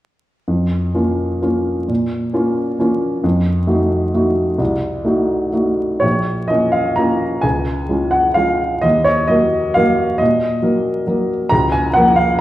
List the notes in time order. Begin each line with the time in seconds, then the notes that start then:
0.48 F2
0.94 A#3 C#4 F4
1.42 A#3 C#4 F4
1.88 A#2
2.33 A#3 C#4 F4
2.79 A#3 C#4 F4
3.24 F2
3.67 A3 D#4 F#4
4.14 A3 D#4 F#4
4.58 C2
5.05 A3 D#4 F#4
5.53 A3 D#4 F#4
6.00 A#1 C#5
6.48 A#3 C#4 F4 D#5
6.72 F5
6.96 A#3 C#4 F4 A#5
7.41 C#2 G#5
7.89 G#3 C#4 F4
8.11 F#5
8.34 G#3 C#4 F4 F5
8.82 D#2 D#5
9.04 C#5
9.28 F#3 A#3 A#4 D#5
9.74 F#3 A#3 A#4 F5
10.18 A#2 D#5
10.62 F#3 A#3 A#4
11.07 F#3 A#3 A#4
11.49 C#2 A#5
11.72 G#5
11.94 F3 A#3 A#4 F#5
12.16 F5